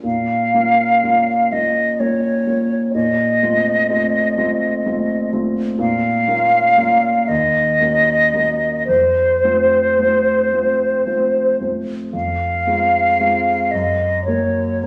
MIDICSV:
0, 0, Header, 1, 3, 480
1, 0, Start_track
1, 0, Key_signature, -5, "minor"
1, 0, Tempo, 1003344
1, 21, Time_signature, 6, 3, 24, 8
1, 501, Tempo, 950872
1, 2901, Tempo, 981997
1, 3381, Tempo, 1047120
1, 4341, Tempo, 1090909
1, 5301, Tempo, 1071429
1, 7006, End_track
2, 0, Start_track
2, 0, Title_t, "Flute"
2, 0, Program_c, 0, 73
2, 21, Note_on_c, 0, 77, 65
2, 742, Note_on_c, 0, 75, 57
2, 750, Note_off_c, 0, 77, 0
2, 982, Note_on_c, 0, 73, 58
2, 989, Note_off_c, 0, 75, 0
2, 1452, Note_off_c, 0, 73, 0
2, 1455, Note_on_c, 0, 75, 66
2, 2642, Note_off_c, 0, 75, 0
2, 2899, Note_on_c, 0, 77, 83
2, 3609, Note_on_c, 0, 75, 77
2, 3616, Note_off_c, 0, 77, 0
2, 4337, Note_off_c, 0, 75, 0
2, 4340, Note_on_c, 0, 72, 64
2, 5526, Note_off_c, 0, 72, 0
2, 5783, Note_on_c, 0, 77, 68
2, 6489, Note_on_c, 0, 75, 63
2, 6496, Note_off_c, 0, 77, 0
2, 6726, Note_off_c, 0, 75, 0
2, 6729, Note_on_c, 0, 73, 62
2, 7006, Note_off_c, 0, 73, 0
2, 7006, End_track
3, 0, Start_track
3, 0, Title_t, "Grand piano"
3, 0, Program_c, 1, 0
3, 0, Control_c, 1, 64, 127
3, 17, Note_on_c, 1, 46, 39
3, 29, Control_c, 1, 64, 0
3, 111, Control_c, 1, 64, 127
3, 252, Note_off_c, 1, 46, 0
3, 258, Note_on_c, 1, 58, 34
3, 260, Note_on_c, 1, 61, 30
3, 262, Note_on_c, 1, 65, 34
3, 480, Note_off_c, 1, 58, 0
3, 481, Note_off_c, 1, 61, 0
3, 482, Note_off_c, 1, 65, 0
3, 495, Note_on_c, 1, 58, 32
3, 495, Note_on_c, 1, 61, 33
3, 499, Note_on_c, 1, 65, 33
3, 722, Note_off_c, 1, 58, 0
3, 722, Note_off_c, 1, 61, 0
3, 725, Note_off_c, 1, 65, 0
3, 744, Note_on_c, 1, 58, 33
3, 744, Note_on_c, 1, 61, 34
3, 745, Note_on_c, 1, 65, 36
3, 963, Note_off_c, 1, 58, 0
3, 963, Note_off_c, 1, 61, 0
3, 964, Note_off_c, 1, 65, 0
3, 981, Note_on_c, 1, 58, 33
3, 982, Note_on_c, 1, 61, 31
3, 984, Note_on_c, 1, 65, 34
3, 1198, Note_off_c, 1, 58, 0
3, 1198, Note_off_c, 1, 61, 0
3, 1199, Note_off_c, 1, 65, 0
3, 1218, Note_on_c, 1, 58, 32
3, 1219, Note_on_c, 1, 65, 32
3, 1221, Note_on_c, 1, 61, 30
3, 1435, Note_off_c, 1, 58, 0
3, 1435, Note_off_c, 1, 65, 0
3, 1436, Note_off_c, 1, 61, 0
3, 1459, Note_on_c, 1, 46, 44
3, 1464, Control_c, 1, 64, 0
3, 1535, Control_c, 1, 64, 127
3, 1692, Note_off_c, 1, 46, 0
3, 1703, Note_on_c, 1, 57, 39
3, 1704, Note_on_c, 1, 60, 36
3, 1709, Note_on_c, 1, 65, 40
3, 1925, Note_off_c, 1, 57, 0
3, 1925, Note_off_c, 1, 60, 0
3, 1927, Note_off_c, 1, 65, 0
3, 1941, Note_on_c, 1, 57, 38
3, 1943, Note_on_c, 1, 60, 38
3, 1945, Note_on_c, 1, 65, 40
3, 2164, Note_off_c, 1, 57, 0
3, 2165, Note_off_c, 1, 60, 0
3, 2166, Note_off_c, 1, 65, 0
3, 2182, Note_on_c, 1, 57, 42
3, 2183, Note_on_c, 1, 60, 42
3, 2183, Note_on_c, 1, 65, 42
3, 2403, Note_off_c, 1, 57, 0
3, 2404, Note_off_c, 1, 60, 0
3, 2404, Note_off_c, 1, 65, 0
3, 2427, Note_on_c, 1, 57, 39
3, 2427, Note_on_c, 1, 60, 38
3, 2430, Note_on_c, 1, 65, 43
3, 2644, Note_off_c, 1, 57, 0
3, 2644, Note_off_c, 1, 60, 0
3, 2645, Note_off_c, 1, 65, 0
3, 2662, Note_on_c, 1, 57, 38
3, 2666, Note_on_c, 1, 60, 36
3, 2666, Note_on_c, 1, 65, 44
3, 2881, Note_off_c, 1, 57, 0
3, 2883, Note_off_c, 1, 60, 0
3, 2883, Note_off_c, 1, 65, 0
3, 2892, Note_on_c, 1, 46, 51
3, 2910, Control_c, 1, 64, 0
3, 2978, Control_c, 1, 64, 127
3, 3126, Note_off_c, 1, 46, 0
3, 3134, Note_on_c, 1, 58, 43
3, 3135, Note_on_c, 1, 61, 43
3, 3137, Note_on_c, 1, 65, 44
3, 3360, Note_off_c, 1, 58, 0
3, 3361, Note_off_c, 1, 61, 0
3, 3362, Note_off_c, 1, 65, 0
3, 3374, Note_on_c, 1, 58, 38
3, 3379, Note_on_c, 1, 61, 40
3, 3379, Note_on_c, 1, 65, 45
3, 3593, Note_off_c, 1, 58, 0
3, 3595, Note_off_c, 1, 61, 0
3, 3595, Note_off_c, 1, 65, 0
3, 3612, Note_on_c, 1, 39, 51
3, 3623, Control_c, 1, 64, 0
3, 3708, Control_c, 1, 64, 127
3, 3843, Note_off_c, 1, 39, 0
3, 3848, Note_on_c, 1, 58, 35
3, 3852, Note_on_c, 1, 61, 36
3, 3852, Note_on_c, 1, 66, 39
3, 4074, Note_off_c, 1, 58, 0
3, 4076, Note_off_c, 1, 61, 0
3, 4076, Note_off_c, 1, 66, 0
3, 4094, Note_on_c, 1, 58, 33
3, 4094, Note_on_c, 1, 61, 34
3, 4098, Note_on_c, 1, 66, 36
3, 4324, Note_off_c, 1, 58, 0
3, 4324, Note_off_c, 1, 61, 0
3, 4326, Note_off_c, 1, 66, 0
3, 4343, Note_on_c, 1, 41, 45
3, 4351, Control_c, 1, 64, 0
3, 4445, Control_c, 1, 64, 127
3, 4578, Note_off_c, 1, 41, 0
3, 4587, Note_on_c, 1, 57, 34
3, 4589, Note_on_c, 1, 65, 38
3, 4591, Note_on_c, 1, 60, 35
3, 4810, Note_off_c, 1, 57, 0
3, 4812, Note_off_c, 1, 60, 0
3, 4812, Note_off_c, 1, 65, 0
3, 4828, Note_on_c, 1, 57, 32
3, 4832, Note_on_c, 1, 60, 33
3, 4833, Note_on_c, 1, 65, 35
3, 5049, Note_off_c, 1, 57, 0
3, 5051, Note_off_c, 1, 60, 0
3, 5051, Note_off_c, 1, 65, 0
3, 5066, Note_on_c, 1, 57, 34
3, 5071, Note_on_c, 1, 60, 34
3, 5073, Note_on_c, 1, 65, 37
3, 5285, Note_off_c, 1, 57, 0
3, 5287, Note_off_c, 1, 60, 0
3, 5288, Note_off_c, 1, 65, 0
3, 5304, Note_on_c, 1, 57, 32
3, 5305, Note_on_c, 1, 60, 30
3, 5306, Note_on_c, 1, 65, 34
3, 5527, Note_off_c, 1, 57, 0
3, 5528, Note_off_c, 1, 60, 0
3, 5529, Note_off_c, 1, 65, 0
3, 5548, Note_on_c, 1, 57, 29
3, 5548, Note_on_c, 1, 60, 32
3, 5550, Note_on_c, 1, 65, 31
3, 5767, Note_off_c, 1, 57, 0
3, 5767, Note_off_c, 1, 60, 0
3, 5768, Note_off_c, 1, 65, 0
3, 5782, Note_on_c, 1, 41, 44
3, 5790, Control_c, 1, 64, 0
3, 5866, Control_c, 1, 64, 127
3, 6010, Note_off_c, 1, 41, 0
3, 6022, Note_on_c, 1, 56, 35
3, 6022, Note_on_c, 1, 60, 34
3, 6024, Note_on_c, 1, 65, 39
3, 6239, Note_off_c, 1, 56, 0
3, 6240, Note_off_c, 1, 60, 0
3, 6240, Note_off_c, 1, 65, 0
3, 6258, Note_on_c, 1, 56, 35
3, 6262, Note_on_c, 1, 65, 41
3, 6264, Note_on_c, 1, 60, 34
3, 6476, Note_off_c, 1, 56, 0
3, 6478, Note_off_c, 1, 65, 0
3, 6479, Note_off_c, 1, 60, 0
3, 6499, Control_c, 1, 64, 0
3, 6499, Note_on_c, 1, 42, 51
3, 6577, Control_c, 1, 64, 127
3, 6729, Note_off_c, 1, 42, 0
3, 6737, Note_on_c, 1, 54, 35
3, 6743, Note_on_c, 1, 58, 35
3, 6743, Note_on_c, 1, 70, 36
3, 6965, Note_off_c, 1, 54, 0
3, 6968, Note_off_c, 1, 58, 0
3, 6968, Note_off_c, 1, 70, 0
3, 6989, Note_on_c, 1, 54, 32
3, 6991, Note_on_c, 1, 70, 36
3, 6992, Note_on_c, 1, 58, 35
3, 7006, Note_off_c, 1, 54, 0
3, 7006, Note_off_c, 1, 58, 0
3, 7006, Note_off_c, 1, 70, 0
3, 7006, End_track
0, 0, End_of_file